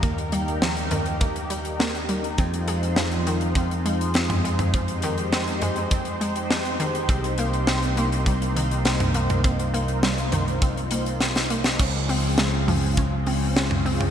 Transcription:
Already playing: D#2 G3 A#3 D#4 A#4
0.03 A#3 G4, kick, closed hi-hat
0.18 closed hi-hat
0.32 G3, closed hi-hat
0.48 closed hi-hat
0.62 F3, snare, closed hi-hat
0.77 closed hi-hat
0.91 D#3, closed hi-hat, mid tom
1.06 closed hi-hat
1.21 A#3, kick, closed hi-hat
1.36 closed hi-hat
1.50 G3, closed hi-hat
1.65 closed hi-hat
1.80 A#3, snare, closed hi-hat
1.95 closed hi-hat
2.09 G3, closed hi-hat
2.24 closed hi-hat
2.38 F2 G#3 C4 F4 C5, kick, closed hi-hat
2.54 closed hi-hat
2.68 G#3, closed hi-hat
2.83 closed hi-hat
2.96 F3, snare, closed hi-hat
3.11 closed hi-hat
3.27 D#3, closed hi-hat
3.41 closed hi-hat
3.55 C4, kick, closed hi-hat
3.71 closed hi-hat
3.86 G#3, closed hi-hat
4.01 closed hi-hat
4.14 C4, snare, closed hi-hat
4.30 closed hi-hat, mid tom
4.44 G#3, closed hi-hat
4.59 closed hi-hat, mid tom
4.74 F3 G4, kick, closed hi-hat
4.88 closed hi-hat
5.02 D#3, closed hi-hat
5.18 closed hi-hat
5.32 C4, snare, closed hi-hat
5.48 closed hi-hat
5.62 G#3, closed hi-hat, mid tom
5.76 closed hi-hat
5.91 C4, kick, closed hi-hat
6.05 closed hi-hat
6.21 G#3, closed hi-hat
6.36 closed hi-hat
6.50 F3, snare, closed hi-hat
6.65 closed hi-hat
6.80 D#3, closed hi-hat
6.95 closed hi-hat
7.09 C2 A#3 C4, kick, closed hi-hat
7.24 closed hi-hat
7.38 A#3, closed hi-hat
7.53 closed hi-hat
7.67 C4, snare, closed hi-hat
7.83 closed hi-hat
7.97 A#3, closed hi-hat
8.12 closed hi-hat
8.26 G3, kick, closed hi-hat
8.42 closed hi-hat
8.56 D#3, closed hi-hat
8.71 closed hi-hat
8.85 C4, snare, closed hi-hat
9.00 closed hi-hat, mid tom
9.14 A#3, closed hi-hat
9.30 closed hi-hat, mid tom
9.44 C4 F4, kick, closed hi-hat
9.59 closed hi-hat
9.74 A#3, closed hi-hat
9.88 closed hi-hat
10.03 G3, snare, closed hi-hat
10.18 closed hi-hat
10.32 D#3, closed hi-hat, mid tom
10.48 closed hi-hat
10.62 C4, kick, closed hi-hat
10.77 closed hi-hat
10.91 A#3, closed hi-hat
11.06 closed hi-hat
11.21 C4, snare, closed hi-hat
11.35 snare, closed hi-hat
11.50 A#3, closed hi-hat
11.64 snare, closed hi-hat
11.79 C#2 C#3 F3 G#3 C4 C#4 F4, kick, closed hi-hat, crash
12.09 C4, open hi-hat
12.38 G#3, snare, closed hi-hat
12.68 F3, mid tom, open hi-hat
12.97 C#4, kick, closed hi-hat
13.26 C4, open hi-hat
13.56 C#4, snare, closed hi-hat
13.71 mid tom
13.86 C4, open hi-hat
14.01 mid tom

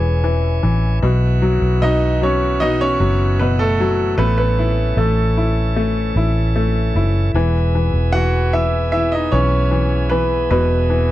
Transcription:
Already playing: E1 B2 E3 G#3 C#4 G#4 G#5
0.24 E3
0.63 A1 E3
1.03 B1 B2 B3 F#4
1.42 F#3
1.62 B1
1.82 B2 D#4 D#5
2.21 F#3 C#4 C#5
2.60 B2 D#4 D#5
2.81 C#4 C#5
3.00 F#1 F#3
3.39 B2 B3 B4
3.59 A3 A4
3.80 F#3
4.18 A1 A3 B3 C#4 A4 B4
4.38 B3 B4
4.59 E4
4.97 A1 A3 A4
5.37 E4
5.76 A3
6.16 A1 E4
6.56 A3
6.95 F#1 E4
7.34 E1 E3 B3 G#4
7.75 E3
7.93 E1
8.13 E3 F#4 F#5
8.53 E3 E4 E5
8.92 E3 E4 E5
9.12 D#4 D#5
9.32 B1 E3 C#4 C#5
9.71 E3
10.10 E3 B3 B4
10.51 E1 B2 B3 B4
10.90 E3

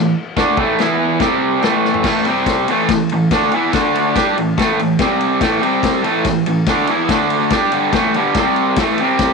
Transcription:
Already playing: A2 E3
0.37 D3 A3 D4, kick, snare, crash
0.57 A2 E3 A3, kick
0.79 E3 B3 E4, snare, crash
1.20 C3 G3 C4, kick, snare, crash
1.62 A2 E3 A3, snare, crash
1.85 snare
1.94 floor tom
2.03 A2 E3 A3, kick, snare, crash
2.25 C3 G3 C4, ride
2.46 kick, snare, ride
2.68 A2 E3 A3, ride
2.89 A2 E3, kick, snare, ride
3.09 A2 E3, ride
3.31 D3 A3 D4, kick, snare, ride
3.52 E3 B3 E4, ride
3.73 D3 A3 D4, kick, snare, ride
3.95 ride
4.16 G3 D4 G4, kick, snare, ride
4.37 A2 E3, ride
4.58 A2 E3 A3, kick, snare, ride
4.79 A2 E3, ride
4.99 C3 G3 C4, kick, snare, ride
5.21 ride
5.41 A2 E3 A3, kick, snare, ride
5.61 C3 G3 C4, ride
5.83 kick, snare, ride
6.03 A2 E3 A3, ride
6.25 A2 E3, kick, snare, ride
6.46 A2 E3, ride
6.66 D3 A3 D4, kick, snare, ride
6.87 E3 B3 E4, ride
7.08 D3 A3 D4, kick, snare, ride
7.30 ride
7.50 G3 D4 G4, kick, snare, ride
7.72 G2 D3 G3, ride
7.93 A2 E3 A3, kick, snare, ride
8.14 G2 D3 G3, ride
8.35 C3 G3 C4, kick, snare, ride
8.56 ride
8.76 A2 E3 A3, kick, snare, ride
8.98 C3, ride
9.02 G3 C4
9.19 kick, snare, ride

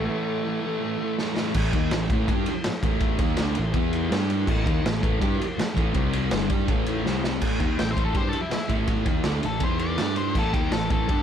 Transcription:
Already playing: A3
0.04 A2 E3
0.09 A3
0.42 A2 E3
0.48 A3
0.61 A3
0.66 E3
0.79 A2 E3
0.83 A3
0.98 A3
1.03 E3
1.18 snare
1.36 A3, snare
1.41 E3
1.54 A1 A2 E3 A3, kick, crash
1.73 D#2 D#3 A#3 D#4, kick, ride
1.91 A1 A2 E3, snare, ride
2.10 A1 A2 E3 A3, kick, ride
2.28 G2 G3 D4 G4, kick, ride
2.46 muted picked electric bass stroke, muted distorted electric guitar stroke, ride
2.64 muted distorted electric guitar stroke, muted picked electric bass stroke, snare, ride
2.83 A1 A2 E3 A3, kick, ride
3.00 kick, ride
3.19 D#2 D#3 A#3 D#4, kick, ride
3.37 D2 D3 A3, snare, ride
3.41 D4
3.55 A1 A2 E3, ride
3.73 E2 E3 B3 E4, kick, ride
3.93 ride
4.10 G2 G3 D4 G4, snare, ride
4.30 ride
4.47 A1 A2 E3 A3, kick, crash
4.65 D#2 D#3 A#3 D#4, kick, ride
4.83 A1 A2 E3, snare, ride
5.01 A1 A2 E3 A3, kick, ride
5.19 G2 G3 D4 G4, kick, ride
5.39 muted distorted electric guitar stroke, muted picked electric bass stroke, ride
5.57 muted distorted electric guitar stroke, muted picked electric bass stroke, snare, ride
5.74 A1 A2 E3 A3, kick, ride
5.93 C2 C3 G3 C4, kick, ride
6.13 ride
6.31 G1 G2 D3 G3, snare, ride
6.49 G2 G3 D4 G4, kick, ride
6.68 A1 A2 E3 A3, kick, ride
6.86 ride
7.04 C2 C3 G3 C4, snare
7.24 snare
7.41 A1 A2 E3 A3, kick, crash
7.59 D#2 D#3 A#3 D#4, kick, ride
7.78 A1 A2 E3 G5, snare, ride
7.91 A2 C5
7.96 A1 E3 A3, kick, ride
8.05 A4
8.14 G2 G3 D4 G4 C5, kick, ride
8.29 A4, ride
8.33 muted distorted electric guitar stroke, muted picked electric bass stroke
8.41 E4
8.51 E4, muted distorted electric guitar stroke, muted picked electric bass stroke, snare, ride
8.68 A1 A2 E3 A3, kick, ride
8.87 kick, ride
9.05 D#2 D#3 A#3 D#4, kick, ride
9.24 D2 D3 A3 D4, snare, ride
9.42 A1 A2 E3 A4, ride
9.60 E2 E3 B3 E4, kick, ride
9.64 C5
9.79 D5, ride
9.98 G2 G3 D4 G4, snare, ride
10.16 C5, ride
10.35 A1 A2 E3 A3 A4, kick, crash
10.53 D#2 D#3 A#3 D#4 G4, kick, ride
10.71 A1 A2 E3 A4, snare, ride
10.90 A1 A2 E3 A3 A4, kick, ride
11.08 G2 G3 D4 G4, kick, ride

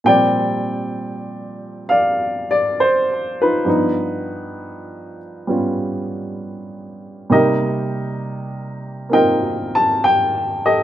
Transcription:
0.04 A#2 F3 G3 C4 G5
0.09 D5
1.89 D5 F5
2.51 D5
2.80 C5
3.42 D#4 F4 B4
3.65 G2 F3 B3
3.69 D#4
5.47 G3 B3 C#4 F4
7.30 C3 G3 A#3 D#4 D#5
7.34 G4 A#4
9.09 A#3 C4 D#4 F4 A#4 D#5 G5
9.75 A5
10.04 G5
10.66 G4 A4 D#5

